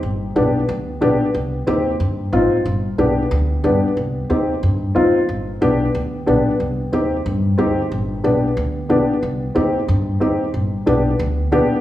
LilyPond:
<<
  \new Staff \with { instrumentName = "Upright piano" } { \time 4/4 \key c \minor \tempo 4 = 183 r4 <b d' g'>8 r4. <b d' g'>8 r8 | r4 <c' ees' g'>8 r4. <c' ees' f'>8 r8 | r4 <b d' g'>8 r4. <b d' g'>8 r8 | r4 <c' ees' g'>8 r4. <c' ees' f'>8 r8 |
r4 <b d' g'>8 r4. <b d' g'>8 r8 | r4 <c' ees' g'>8 r4. <c' ees' g'>8 r8 | r4 <b d' g'>8 r4. <b d' g'>8 r8 | r4 <c' ees' g'>8 r4. <c' ees' g'>8 r8 |
r4 <b d' g'>8 r4. <b d' g'>8 r8 | }
  \new Staff \with { instrumentName = "Upright bass" } { \clef bass \time 4/4 \key c \minor g,,4 b,,4 d,4 b,,8 r8 | c,4 ees,4 g,4 aes,,8 r8 | g,,4 b,,4 d,4 g,8 r8 | c,4 ees,4 g,4 ees,8 r8 |
g,,4 b,,4 d,4 b,,8 r8 | c,4 ees,4 g,4 r4 | g,,4 b,,4 d,4 b,,8 r8 | c,4 ees,4 g,4 ees,8 r8 |
g,,4 b,,4 d,4 b,,8 r8 | }
>>